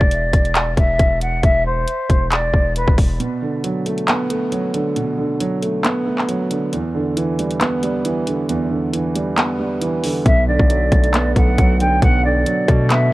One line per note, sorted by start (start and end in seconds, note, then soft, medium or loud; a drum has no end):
0.00 0.32 E1 loud
0.00 0.73 D5 medium
0.00 kick medium
0.11 closed hi-hat medium
0.33 0.75 E1 loud
0.33 kick loud
0.33 closed hi-hat medium
0.45 closed hi-hat soft
0.55 clap loud
0.55 closed hi-hat medium
0.77 0.98 E1 loud
0.77 1.19 E5 medium
0.77 kick medium
0.77 closed hi-hat medium
0.99 1.42 E1 loud
0.99 kick medium
0.99 closed hi-hat medium
1.21 1.41 F#5 medium
1.21 closed hi-hat medium
1.43 1.86 E1 loud
1.43 1.63 E5 loud
1.43 kick loud
1.43 closed hi-hat medium
1.65 2.28 C5 medium
1.88 closed hi-hat medium
2.10 2.52 E1 loud
2.10 kick medium
2.10 closed hi-hat medium
2.31 2.73 D5 medium
2.31 clap loud
2.31 closed hi-hat medium
2.54 2.86 E1 loud
2.54 kick medium
2.76 2.95 B4 medium
2.76 closed hi-hat medium
2.87 3.19 E1 loud
2.87 kick loud
2.98 kick medium
2.98 open hi-hat medium
3.20 4.30 B2 medium
3.20 closed hi-hat medium
3.42 4.52 D3 medium
3.64 4.51 F#3 medium
3.64 closed hi-hat medium
3.86 4.29 A3 medium
3.86 closed hi-hat medium
3.98 closed hi-hat soft
4.08 5.18 B3 loud
4.08 clap loud
4.08 closed hi-hat medium
4.30 5.40 A3 medium
4.30 closed hi-hat medium
4.52 5.39 F#3 medium
4.52 closed hi-hat medium
4.74 5.17 D3 medium
4.74 closed hi-hat medium
4.96 6.07 B2 medium
4.96 closed hi-hat medium
5.18 6.29 D3 medium
5.40 6.27 F#3 medium
5.40 closed hi-hat medium
5.62 6.05 A3 medium
5.62 closed hi-hat medium
5.84 6.73 B3 loud
5.84 clap loud
5.84 closed hi-hat medium
6.07 6.73 A3 medium
6.18 clap medium
6.29 6.73 F#3 medium
6.29 closed hi-hat medium
6.51 6.73 D3 medium
6.51 closed hi-hat medium
6.73 7.83 E2 medium
6.73 closed hi-hat medium
6.95 8.05 D3 medium
7.17 8.04 E3 medium
7.17 closed hi-hat medium
7.39 7.82 G3 medium
7.39 closed hi-hat medium
7.51 closed hi-hat soft
7.61 8.71 B3 loud
7.61 clap loud
7.61 closed hi-hat medium
7.83 8.93 G3 medium
7.83 closed hi-hat medium
8.05 8.92 E3 medium
8.05 closed hi-hat medium
8.27 8.70 D3 medium
8.27 closed hi-hat medium
8.49 9.60 E2 medium
8.49 closed hi-hat medium
8.71 9.82 D3 medium
8.93 9.80 E3 medium
8.93 closed hi-hat medium
9.15 9.58 G3 medium
9.15 closed hi-hat medium
9.37 10.26 B3 medium
9.37 clap loud
9.37 closed hi-hat medium
9.59 10.26 G3 medium
9.82 10.26 E3 medium
9.82 closed hi-hat medium
10.04 10.26 D3 medium
10.04 open hi-hat medium
10.26 10.58 B1 loud
10.26 11.36 B2 medium
10.26 10.45 E5 loud
10.26 kick loud
10.26 closed hi-hat medium
10.47 11.58 D3 medium
10.47 11.32 D5 medium
10.59 10.91 B1 loud
10.59 kick medium
10.70 11.57 F#3 medium
10.70 closed hi-hat medium
10.92 11.34 B1 loud
10.92 11.34 A3 medium
10.92 kick loud
10.92 closed hi-hat medium
11.04 closed hi-hat soft
11.14 12.24 B3 loud
11.14 clap loud
11.14 closed hi-hat medium
11.36 11.57 B1 loud
11.36 12.46 A3 medium
11.36 11.78 F#5 medium
11.36 kick medium
11.36 closed hi-hat medium
11.58 12.01 B1 loud
11.58 12.45 F#3 medium
11.58 kick medium
11.58 closed hi-hat medium
11.80 12.23 D3 medium
11.80 12.00 G5 medium
11.80 closed hi-hat medium
12.02 12.45 B1 loud
12.02 13.13 B2 medium
12.02 12.22 F#5 loud
12.02 kick loud
12.02 closed hi-hat medium
12.24 13.13 D3 medium
12.24 12.87 D5 medium
12.46 13.13 F#3 medium
12.46 closed hi-hat medium
12.68 13.11 B2 loud
12.68 13.11 A3 medium
12.68 kick medium
12.68 closed hi-hat medium
12.90 13.13 B3 loud
12.90 13.13 E5 medium
12.90 clap loud
12.90 closed hi-hat medium